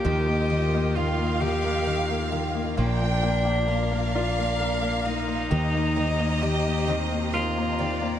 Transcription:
0.00 0.49 A#3 soft
0.00 0.13 D4 medium
0.00 5.48 F4 medium
0.00 0.97 G4 loud
0.00 5.47 A#4 medium
0.05 2.75 D#2 medium
0.05 0.50 D#3 medium
0.05 2.77 F3 medium
0.05 0.95 G4 medium
0.05 2.75 D#5 medium
0.05 0.92 D#5 loud
0.05 2.75 G5 medium
0.28 0.73 A#3 soft
0.50 0.94 D#3 medium
0.50 1.87 A#3 medium
0.74 1.17 A#3 medium
0.96 1.40 D#3 medium
0.96 1.43 F4 medium
0.96 2.31 G4 medium
0.96 2.78 F5 loud
1.18 1.63 A#3 medium
1.41 1.85 D#3 medium
1.41 2.87 D#4 medium
1.41 2.51 G4 loud
1.64 2.08 A#3 medium
1.86 2.31 D#3 soft
1.86 3.22 A#3 medium
2.09 2.53 A#3 medium
2.32 2.76 D#3 soft
2.32 2.77 G4 medium
2.55 2.76 A#3 medium
2.77 5.48 A#1 medium
2.77 5.51 F3 medium
2.77 3.00 A#3 medium
2.77 4.10 D4 loud
2.77 3.67 F4 medium
2.77 5.49 D5 medium
2.77 3.69 G5 loud
2.77 8.19 A#5 medium
3.01 3.21 A#3 soft
3.22 4.59 A#3 medium
3.22 3.43 A#3 medium
3.45 3.67 A#3 medium
3.68 3.90 A#3 medium
3.68 5.04 F4 medium
3.68 5.47 F5 loud
3.91 4.37 A#3 medium
4.15 5.07 D4 medium
4.15 5.48 F4 medium
4.38 4.60 A#3 medium
4.59 5.51 A#3 medium
4.59 4.81 A#3 soft
4.82 5.05 A#3 medium
5.05 5.27 A#3 medium
5.05 6.44 D#4 loud
5.05 5.51 F4 medium
5.28 5.50 A#3 medium
5.51 8.19 D#2 loud
5.51 5.96 D#3 medium
5.51 5.96 A#3 medium
5.51 8.19 D#4 medium
5.51 6.41 G4 medium
5.51 8.19 G4 medium
5.51 8.19 C5 medium
5.51 7.79 D#5 loud
5.74 6.18 A#3 medium
5.96 6.41 D#3 medium
5.96 7.32 A#3 medium
6.20 6.65 A#3 medium
6.42 6.88 D#3 medium
6.42 7.06 G4 loud
6.42 7.77 G4 medium
6.67 7.10 A#3 medium
6.87 7.33 D#3 medium
6.87 8.19 C4 medium
7.12 7.56 A#3 soft
7.33 7.79 D#3 medium
7.33 8.19 A#3 medium
7.33 8.19 F4 loud
7.57 8.00 A#3 medium
7.79 8.19 D#3 medium
7.79 8.19 G4 medium
7.79 8.19 D5 medium
8.02 8.19 A#3 medium

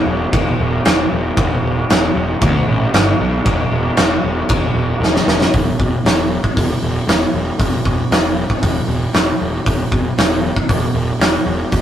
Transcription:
0.06 0.24 E1 medium
0.32 0.51 E1 medium
0.32 kick loud
0.32 crash medium
0.59 0.77 E1 medium
0.85 1.04 E1 medium
0.85 snare loud
0.85 crash medium
1.12 1.30 E1 medium
1.37 1.55 E1 loud
1.37 kick loud
1.37 crash medium
1.63 1.81 E1 medium
1.90 2.08 E1 medium
1.90 snare loud
1.90 crash medium
2.15 2.33 E1 medium
2.41 2.59 D2 medium
2.41 kick loud
2.41 crash medium
2.68 2.86 A1 medium
2.93 3.11 G1 medium
2.93 snare loud
2.93 crash medium
3.20 3.38 B1 medium
3.45 3.63 E1 medium
3.45 kick loud
3.45 crash medium
3.72 3.89 E1 medium
3.97 4.16 E1 medium
3.97 snare loud
3.97 crash medium
4.24 4.41 E1 medium
4.49 4.67 E1 medium
4.49 kick loud
4.49 crash medium
4.75 4.93 E1 medium
5.00 5.18 E1 medium
5.00 snare medium
5.16 snare medium
5.27 5.45 E1 medium
5.27 snare loud
5.41 snare medium
5.54 5.69 E1 loud
5.54 kick loud
5.54 open hi-hat medium
5.79 5.95 E1 medium
5.79 kick medium
6.04 6.36 E1 medium
6.04 snare loud
6.04 open hi-hat medium
6.44 kick medium
6.57 6.72 E1 medium
6.57 kick medium
6.57 open hi-hat medium
6.82 6.98 E1 medium
7.08 7.24 E1 medium
7.08 snare loud
7.08 open hi-hat medium
7.34 7.50 E1 medium
7.59 7.75 E1 medium
7.59 kick loud
7.59 open hi-hat medium
7.85 8.01 E1 medium
7.85 kick medium
8.11 8.43 E1 medium
8.11 snare loud
8.11 open hi-hat medium
8.50 kick medium
8.63 8.79 E1 medium
8.63 kick loud
8.63 open hi-hat medium
8.88 9.04 E1 medium
9.14 9.30 E1 medium
9.14 snare loud
9.14 open hi-hat medium
9.41 9.57 E1 medium
9.66 9.82 E1 medium
9.66 kick loud
9.66 open hi-hat medium
9.92 10.08 E1 medium
9.92 kick medium
10.18 10.49 E1 medium
10.18 snare loud
10.18 open hi-hat medium
10.56 kick medium
10.69 10.85 E1 medium
10.69 kick loud
10.69 open hi-hat medium
10.94 11.10 E1 medium
11.19 11.36 E1 loud
11.19 snare loud
11.19 open hi-hat medium
11.46 11.62 E1 medium
11.72 11.81 E1 medium
11.72 kick loud
11.72 open hi-hat medium

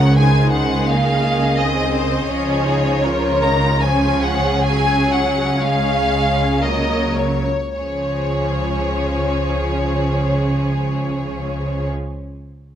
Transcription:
0.00 2.26 C#2 soft
0.00 2.26 C#3 soft
0.00 0.19 F3 soft
0.00 0.17 C#4 soft
0.00 0.15 A#4 soft
0.00 0.19 C#5 soft
0.00 0.19 F#5 medium
0.17 2.26 D#3 soft
0.17 0.89 D#4 soft
0.17 2.29 G#4 soft
0.17 0.87 C5 soft
0.17 0.52 G#5 medium
0.52 0.87 F#5 medium
0.87 1.59 A#3 soft
0.87 3.04 D#5 soft
0.87 1.58 F5 medium
1.58 2.30 C4 soft
1.58 1.94 D#5 medium
1.94 2.29 C5 medium
2.29 7.43 C#2 soft
2.29 7.43 C#3 soft
2.29 3.02 F3 soft
2.29 2.66 C#4 soft
2.29 3.03 G#4 soft
2.29 3.42 C#5 medium
2.67 3.04 D#4 soft
3.03 3.42 F3 soft
3.03 3.83 F4 soft
3.03 3.83 A#4 soft
3.03 3.83 C#5 soft
3.42 3.83 D#3 soft
3.42 3.83 A#5 medium
3.82 4.68 F3 soft
3.82 4.66 C#4 soft
3.82 5.60 G#4 soft
3.82 4.66 C#5 soft
3.82 4.24 G#5 medium
4.24 4.67 F#5 medium
4.66 5.60 F#3 soft
4.66 6.59 C#4 soft
4.66 5.58 C#5 soft
4.66 5.11 G#5 medium
5.13 5.60 F#5 medium
5.61 6.09 G#3 soft
5.61 6.61 G#4 soft
5.61 6.61 C#5 soft
5.61 6.63 F5 medium
6.10 6.62 G#3 soft
6.63 7.48 F#3 soft
6.63 7.47 A#3 soft
6.63 7.47 A#4 soft
6.63 7.45 C#5 soft
6.63 7.21 D#5 soft
7.20 7.75 C#5 soft
7.77 11.89 C#2 soft
7.77 11.90 C#3 soft
7.77 11.90 F3 soft
7.77 11.90 C#4 soft
7.77 11.90 G#4 soft
7.77 11.89 C#5 soft

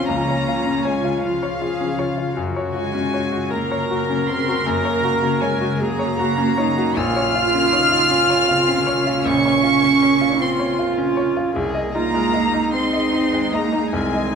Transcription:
0.00 2.34 C#3 medium
0.00 0.12 C#4 soft
0.00 1.26 C#4 medium
0.00 0.21 F4 soft
0.00 2.34 F4 medium
0.00 0.12 C#5 soft
0.00 0.11 F5 soft
0.00 2.33 F5 medium
0.08 2.33 C#2 soft
0.08 0.86 A#3 medium
0.08 0.84 A#5 medium
0.28 0.59 C#5 soft
0.48 0.78 F4 soft
0.66 0.97 C#4 soft
0.85 1.25 G#3 medium
0.85 1.16 C#5 soft
0.85 1.24 G#5 medium
1.04 1.60 F4 soft
1.23 2.37 F3 medium
1.23 1.61 F4 medium
1.23 2.36 F5 medium
1.43 1.73 C#5 soft
1.62 1.92 F4 soft
1.62 2.01 G#4 soft
1.81 2.11 C#4 soft
1.99 2.37 F4 medium
1.99 2.30 C#5 soft
2.17 2.37 F4 soft
2.37 4.62 F#2 soft
2.37 6.93 C#3 medium
2.37 6.97 F#4 medium
2.37 3.53 F#4 medium
2.37 6.93 A#4 medium
2.56 2.87 C#5 soft
2.74 3.54 G#3 medium
2.74 3.06 F#4 soft
2.74 3.48 G#5 medium
2.94 3.25 C#4 soft
3.14 3.44 C#5 soft
3.32 3.89 F#4 soft
3.50 4.30 A#3 medium
3.50 5.81 A#4 medium
3.50 4.27 A#5 medium
3.71 4.02 C#5 soft
3.90 4.21 F#4 soft
4.10 4.40 C#4 soft
4.27 4.65 C4 medium
4.27 4.59 A#4 soft
4.27 4.66 C6 medium
4.48 4.78 F#4 soft
4.65 6.93 F#2 medium
4.65 5.43 A#3 medium
4.65 5.41 A#5 medium
4.85 5.15 C#5 soft
5.04 5.34 F#4 soft
5.23 5.53 C#4 soft
5.42 5.82 G#3 medium
5.42 5.72 C#5 soft
5.42 5.80 G#5 medium
5.61 6.18 F#4 soft
5.80 6.98 A#3 medium
5.80 6.19 G#4 medium
5.80 6.97 A#5 medium
5.99 6.30 C#5 soft
6.19 6.60 F#4 medium
6.19 6.50 F#4 soft
6.38 6.69 C#4 soft
6.58 6.99 D#4 medium
6.58 6.89 C#5 soft
6.78 6.97 F#4 soft
6.96 9.22 A#1 medium
6.96 11.52 C#3 medium
6.96 7.36 C#4 medium
6.96 9.25 F4 loud
6.96 11.56 A#4 medium
6.96 9.26 F6 medium
7.16 7.47 C#5 soft
7.34 7.75 F4 medium
7.34 7.66 F4 medium
7.54 7.85 C#4 soft
7.73 8.12 D#4 medium
7.73 8.04 C#5 soft
7.91 8.47 F4 soft
8.11 8.50 C#4 medium
8.30 8.61 C#5 medium
8.48 8.87 C4 medium
8.48 8.79 F4 medium
8.68 8.99 C#4 soft
8.87 10.41 C#4 medium
8.87 9.18 C#5 medium
9.07 9.37 F4 medium
9.26 11.52 A#1 medium
9.26 10.41 C#4 loud
9.26 10.40 C#6 medium
9.45 9.76 C#5 medium
9.63 9.94 F4 medium
9.83 10.14 C#4 medium
10.02 10.33 C#5 soft
10.21 10.77 F4 soft
10.40 10.79 C4 medium
10.40 11.55 F4 medium
10.40 10.79 C6 medium
10.59 10.90 C#5 medium
10.79 11.10 F4 medium
10.98 11.29 C#4 soft
11.17 11.48 C#5 medium
11.36 11.56 F4 medium
11.56 13.89 C2 medium
11.56 14.35 D#4 medium
11.56 11.96 G#4 medium
11.56 14.35 G#4 medium
11.56 14.35 D#5 medium
11.75 12.06 D#5 medium
11.94 12.74 A#3 medium
11.94 12.26 D#4 soft
11.94 12.36 F4 medium
11.94 12.69 A#5 medium
12.14 12.46 G#3 medium
12.33 13.96 D#4 medium
12.33 12.65 D#5 soft
12.54 13.11 D#4 soft
12.72 13.54 C4 medium
12.72 13.53 C6 medium
12.93 13.25 D#5 soft
13.13 13.45 D#4 soft
13.33 13.65 G#3 soft
13.52 13.92 A#3 medium
13.52 13.85 D#5 soft
13.52 13.93 A#5 medium
13.72 14.05 D#4 soft
13.92 14.35 C2 medium
13.92 14.35 G#3 medium
13.92 14.35 C4 medium
13.92 14.35 G#5 medium
14.14 14.35 D#5 soft

